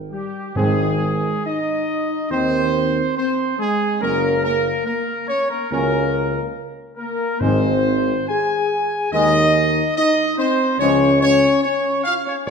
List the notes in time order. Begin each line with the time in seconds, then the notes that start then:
Already playing: G#1
0.10 G3 G4
0.55 G#1 G#2 D#3 G#3 C4 G#4
1.45 D#4 D#5
2.30 D#2 D#3 C4 C5
3.17 C4 C5
3.59 G#3 G#4
4.01 F#1 F#3 A#3 C#4 A#4
4.43 A#3 A#4
4.86 A#3 A#4
5.28 C#4 C#5
5.50 A#3 A#4
5.70 C#2 F#3 A#3 C#4 A#4
6.97 A#3 A#4
7.40 G#1 G#2 D#3 G#3 C4 C5
8.28 G#4 G#5
9.12 D#2 D#3 G#3 D#4 D#5
9.96 D#4 D#5
10.38 C4 C5
10.79 C#2 F3 G#3 C#4 C#5
11.21 C#4 C#5
11.63 C#4 C#5
12.04 F4 F5
12.25 C#4 C#5
12.46 G#1 F3 G#3 C#5